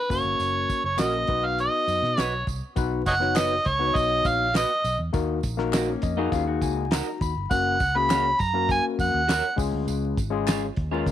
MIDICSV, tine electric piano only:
0, 0, Header, 1, 2, 480
1, 0, Start_track
1, 0, Tempo, 592885
1, 319, Time_signature, 4, 2, 24, 8
1, 8999, End_track
2, 0, Start_track
2, 0, Title_t, "Tine electric piano"
2, 0, Program_c, 0, 4
2, 76, Note_on_c, 0, 58, 64
2, 81, Note_on_c, 0, 61, 65
2, 82, Note_on_c, 0, 66, 60
2, 89, Note_on_c, 0, 70, 72
2, 654, Note_off_c, 0, 58, 0
2, 656, Note_off_c, 0, 61, 0
2, 657, Note_off_c, 0, 66, 0
2, 661, Note_off_c, 0, 70, 0
2, 786, Note_on_c, 0, 58, 66
2, 796, Note_on_c, 0, 61, 58
2, 797, Note_on_c, 0, 66, 58
2, 805, Note_on_c, 0, 70, 72
2, 1031, Note_on_c, 0, 59, 70
2, 1033, Note_off_c, 0, 58, 0
2, 1033, Note_off_c, 0, 66, 0
2, 1037, Note_on_c, 0, 63, 65
2, 1038, Note_off_c, 0, 61, 0
2, 1042, Note_on_c, 0, 66, 60
2, 1043, Note_off_c, 0, 70, 0
2, 1045, Note_on_c, 0, 71, 73
2, 1804, Note_off_c, 0, 59, 0
2, 1807, Note_off_c, 0, 63, 0
2, 1809, Note_off_c, 0, 66, 0
2, 1811, Note_off_c, 0, 71, 0
2, 2233, Note_on_c, 0, 59, 81
2, 2240, Note_on_c, 0, 63, 72
2, 2242, Note_on_c, 0, 66, 79
2, 2251, Note_on_c, 0, 71, 89
2, 2438, Note_off_c, 0, 59, 0
2, 2441, Note_off_c, 0, 63, 0
2, 2442, Note_off_c, 0, 66, 0
2, 2447, Note_off_c, 0, 71, 0
2, 2590, Note_on_c, 0, 59, 74
2, 2596, Note_on_c, 0, 63, 65
2, 2600, Note_on_c, 0, 66, 67
2, 2606, Note_on_c, 0, 73, 76
2, 2863, Note_off_c, 0, 59, 0
2, 2866, Note_off_c, 0, 63, 0
2, 2868, Note_off_c, 0, 66, 0
2, 2871, Note_off_c, 0, 73, 0
2, 3072, Note_on_c, 0, 59, 74
2, 3074, Note_on_c, 0, 63, 67
2, 3080, Note_on_c, 0, 66, 66
2, 3085, Note_on_c, 0, 71, 65
2, 3135, Note_off_c, 0, 71, 0
2, 3136, Note_on_c, 0, 73, 85
2, 3612, Note_off_c, 0, 59, 0
2, 3613, Note_off_c, 0, 63, 0
2, 3616, Note_off_c, 0, 66, 0
2, 3644, Note_off_c, 0, 73, 0
2, 4151, Note_on_c, 0, 58, 82
2, 4153, Note_on_c, 0, 63, 74
2, 4157, Note_on_c, 0, 66, 79
2, 4165, Note_on_c, 0, 70, 86
2, 4356, Note_off_c, 0, 58, 0
2, 4357, Note_off_c, 0, 63, 0
2, 4359, Note_off_c, 0, 66, 0
2, 4363, Note_off_c, 0, 70, 0
2, 4511, Note_on_c, 0, 58, 84
2, 4522, Note_on_c, 0, 63, 79
2, 4522, Note_on_c, 0, 66, 77
2, 4524, Note_on_c, 0, 70, 100
2, 4783, Note_off_c, 0, 58, 0
2, 4788, Note_off_c, 0, 63, 0
2, 4788, Note_off_c, 0, 66, 0
2, 4790, Note_off_c, 0, 70, 0
2, 4879, Note_on_c, 0, 75, 69
2, 4996, Note_on_c, 0, 58, 91
2, 4998, Note_on_c, 0, 63, 85
2, 5002, Note_on_c, 0, 66, 79
2, 5010, Note_on_c, 0, 68, 96
2, 5102, Note_off_c, 0, 75, 0
2, 5118, Note_on_c, 0, 77, 77
2, 5230, Note_off_c, 0, 77, 0
2, 5240, Note_on_c, 0, 78, 70
2, 5351, Note_off_c, 0, 78, 0
2, 5362, Note_on_c, 0, 80, 66
2, 5533, Note_off_c, 0, 58, 0
2, 5534, Note_off_c, 0, 63, 0
2, 5536, Note_off_c, 0, 66, 0
2, 5540, Note_off_c, 0, 68, 0
2, 5583, Note_off_c, 0, 80, 0
2, 5597, Note_on_c, 0, 82, 73
2, 5821, Note_off_c, 0, 82, 0
2, 5841, Note_on_c, 0, 83, 65
2, 6063, Note_off_c, 0, 83, 0
2, 6075, Note_on_c, 0, 58, 68
2, 6080, Note_on_c, 0, 61, 68
2, 6086, Note_on_c, 0, 66, 62
2, 6087, Note_on_c, 0, 70, 74
2, 6278, Note_off_c, 0, 58, 0
2, 6280, Note_off_c, 0, 61, 0
2, 6283, Note_off_c, 0, 66, 0
2, 6284, Note_off_c, 0, 70, 0
2, 6439, Note_on_c, 0, 58, 71
2, 6439, Note_on_c, 0, 61, 70
2, 6448, Note_on_c, 0, 66, 63
2, 6450, Note_on_c, 0, 68, 79
2, 6707, Note_off_c, 0, 58, 0
2, 6707, Note_off_c, 0, 61, 0
2, 6711, Note_off_c, 0, 66, 0
2, 6712, Note_off_c, 0, 68, 0
2, 6908, Note_on_c, 0, 58, 74
2, 6913, Note_on_c, 0, 61, 64
2, 6918, Note_on_c, 0, 66, 71
2, 6920, Note_on_c, 0, 70, 77
2, 7450, Note_off_c, 0, 58, 0
2, 7452, Note_off_c, 0, 61, 0
2, 7454, Note_off_c, 0, 66, 0
2, 7456, Note_off_c, 0, 70, 0
2, 7742, Note_on_c, 0, 56, 74
2, 7747, Note_on_c, 0, 61, 70
2, 7753, Note_on_c, 0, 65, 72
2, 7758, Note_on_c, 0, 68, 83
2, 8231, Note_off_c, 0, 56, 0
2, 8233, Note_off_c, 0, 61, 0
2, 8237, Note_off_c, 0, 65, 0
2, 8239, Note_off_c, 0, 68, 0
2, 8341, Note_on_c, 0, 56, 88
2, 8345, Note_on_c, 0, 61, 82
2, 8350, Note_on_c, 0, 65, 78
2, 8356, Note_on_c, 0, 68, 94
2, 8618, Note_off_c, 0, 56, 0
2, 8621, Note_off_c, 0, 61, 0
2, 8623, Note_off_c, 0, 65, 0
2, 8626, Note_off_c, 0, 68, 0
2, 8835, Note_on_c, 0, 61, 82
2, 8836, Note_on_c, 0, 56, 85
2, 8844, Note_on_c, 0, 65, 76
2, 8847, Note_on_c, 0, 70, 94
2, 8999, Note_off_c, 0, 56, 0
2, 8999, Note_off_c, 0, 61, 0
2, 8999, Note_off_c, 0, 65, 0
2, 8999, Note_off_c, 0, 70, 0
2, 8999, End_track
0, 0, End_of_file